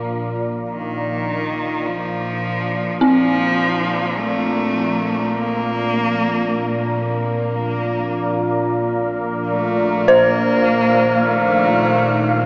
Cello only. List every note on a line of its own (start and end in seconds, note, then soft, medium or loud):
0.70 1.89 D#3 medium
1.87 3.02 F3 medium
3.03 4.21 F3 loud
4.19 5.38 A3 medium
5.36 7.13 A#3 loud
9.48 10.09 A3 medium
10.08 11.27 A#3 medium
11.26 12.43 A3 medium
12.41 12.46 A#3 loud